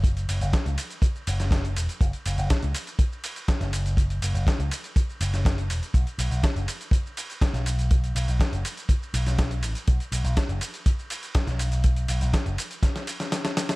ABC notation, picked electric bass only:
X:1
M:4/4
L:1/16
Q:1/4=122
K:Bmix
V:1 name="Picked electric bass" clef=bass
F,,,2 F,,, F,,, z C,, z4 F,,,4 E,,, z | F,,, z F,,, F,,, z C,, z6 z F,,,3- | F,,,2 F,,, F,,, z C,, z4 F,,,4 E,,, z | B,,, z B,,, B,,, z F,,, z6 z B,,,3- |
B,,,2 B,,, B,,, z F,,, z4 B,,,4 A,,, z | B,,, z B,,, B,,, z F,,, z6 z B,,,3- | B,,,2 B,,, B,,, z F,,, z8 z2 |]